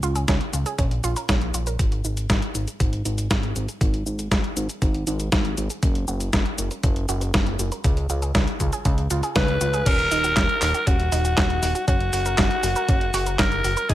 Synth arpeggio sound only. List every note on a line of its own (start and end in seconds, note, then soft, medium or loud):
0.03 0.13 F4 loud
0.15 0.22 G#4 medium
0.28 0.35 C#4 medium
0.53 0.60 F4 medium
0.66 0.76 G#4 medium
0.79 0.89 C#4 medium
1.04 1.14 F4 loud
1.16 1.23 A#4 medium
1.29 1.36 C#4 medium
1.54 1.61 F4 medium
1.67 1.77 A#4 medium
1.79 1.90 C4 medium
2.05 2.15 D#4 loud
2.17 2.24 G#4 medium
2.30 2.37 C4 medium
2.55 2.62 D#4 medium
2.68 2.78 G#4 medium
2.80 2.91 C4 medium
3.05 3.16 D#4 loud
3.18 3.25 G#4 medium
3.31 3.38 C4 medium
3.56 3.63 D#4 medium
3.68 3.79 G#4 medium
3.81 3.92 C4 medium
4.06 4.17 D#4 loud
4.19 4.26 G#4 medium
4.31 4.38 C4 medium
4.57 4.64 D#4 medium
4.69 4.80 G#4 medium
4.82 4.92 C4 medium
5.07 5.18 D#4 loud
5.20 5.27 G#4 medium
5.32 5.39 C4 medium
5.57 5.64 D#4 medium
5.70 5.81 G#4 medium
5.83 5.93 C#4 medium
6.08 6.18 F#4 loud
6.20 6.28 A#4 medium
6.33 6.40 C#4 medium
6.58 6.65 F#4 medium
6.71 6.81 A#4 medium
6.84 6.94 C#4 medium
7.09 7.19 F#4 loud
7.21 7.28 A#4 medium
7.34 7.41 C#4 medium
7.59 7.66 F#4 medium
7.72 7.82 A#4 medium
7.85 7.95 C#4 medium
8.10 8.20 F4 loud
8.22 8.29 G#4 medium
8.35 8.42 C#4 medium
8.60 8.67 F4 medium
8.73 8.83 G#4 medium
8.85 8.96 C#4 medium
9.11 9.21 F4 loud
9.23 9.30 G#4 medium
9.36 9.43 C#4 medium
9.61 9.68 F4 medium
9.73 9.84 G#4 medium
9.86 9.97 C#4 medium
10.11 10.22 D#4 loud
10.24 10.31 F#4 medium
10.37 10.44 C#4 medium
10.62 10.69 D#4 medium
10.74 10.85 F#4 medium
10.87 10.97 C#4 medium
11.12 11.23 D#4 loud
11.25 11.32 F#4 medium
11.37 11.44 C#4 medium
11.62 11.70 D#4 medium
11.75 11.86 F#4 medium
11.88 11.98 C#4 medium
12.13 12.23 F#4 loud
12.26 12.33 A#4 medium
12.38 12.45 C#4 medium
12.63 12.70 F#4 medium
12.76 12.86 A#4 medium
12.89 12.99 C#4 medium
13.14 13.24 F#4 loud
13.26 13.33 A#4 medium
13.39 13.46 C#4 medium
13.64 13.71 F#4 medium
13.77 13.87 A#4 medium
13.89 13.94 D#4 medium